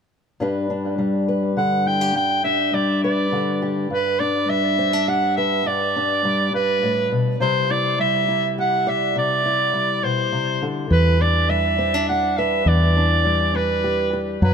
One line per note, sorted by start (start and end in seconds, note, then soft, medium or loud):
0.40 2.15 G2 medium
0.40 0.98 G3 soft
0.40 0.70 D4 soft
0.40 1.85 G4 soft
0.40 1.28 B4 soft
0.70 2.44 D4 soft
0.98 2.72 G3 soft
1.28 3.04 B4 soft
1.57 2.15 D3 soft
1.57 1.88 F#5 medium
1.86 2.01 E4 soft
1.86 2.15 G5 medium
2.01 2.16 G4 soft
2.15 3.89 G2 medium
2.15 2.43 G5 medium
2.44 3.87 D4 soft
2.44 2.75 E5 medium
2.74 4.47 G3 medium
2.74 3.03 D5 medium
3.03 3.88 B4 medium
3.03 3.65 D5 medium
3.32 3.91 D3 soft
3.62 3.87 G4 soft
3.90 5.65 G2 medium
3.90 4.21 B4 medium
4.19 4.78 D4 soft
4.19 4.51 D5 medium
4.48 6.24 G3 soft
4.48 5.10 E5 medium
4.79 4.93 C4 soft
4.93 5.66 D4 soft
5.08 6.86 G4 soft
5.08 5.36 F#5 medium
5.37 5.63 B4 medium
5.37 5.68 E5 medium
5.66 6.53 G2 medium
5.66 6.54 D5 medium
5.96 7.41 D4 soft
6.25 7.40 G3 soft
6.54 6.82 G2 soft
6.54 7.15 B4 medium
6.83 7.11 A2 soft
7.12 7.40 B2 soft
7.40 9.12 C3 medium
7.40 7.98 G3 soft
7.40 7.70 E4 soft
7.40 8.58 G4 soft
7.40 7.73 C5 medium
7.70 8.28 E4 soft
7.70 8.00 D5 medium
7.99 9.73 G3 soft
7.99 8.54 E5 medium
8.28 9.45 E4 soft
8.58 12.08 G4 soft
8.58 8.90 F#5 medium
8.87 9.19 D5 medium
8.87 9.17 E5 medium
9.16 10.03 C3 medium
9.16 10.05 D5 medium
9.46 11.21 E4 soft
9.73 11.49 G3 soft
10.03 10.32 B2 soft
10.03 10.69 C5 medium
10.32 10.62 C3 soft
10.62 10.90 D3 soft
10.90 12.63 E2 medium
10.90 12.62 E3 medium
10.90 11.23 B4 medium
11.21 11.78 D4 soft
11.21 11.51 D5 medium
11.49 13.24 G3 medium
11.49 12.08 E5 medium
11.78 11.94 C4 soft
11.94 12.67 D4 soft
12.09 12.64 G4 soft
12.09 12.39 F#5 medium
12.37 12.63 B4 medium
12.37 12.69 E5 medium
12.66 14.38 E2 medium
12.66 14.38 E3 medium
12.66 13.57 D5 medium
12.97 13.54 D4 soft
13.25 14.42 G3 soft
13.55 14.38 D4 soft
13.55 14.20 B4 medium
13.84 14.12 G4 soft
14.13 14.38 G4 soft
14.42 14.54 F#2 medium
14.42 14.54 F#3 medium
14.42 14.54 B4 medium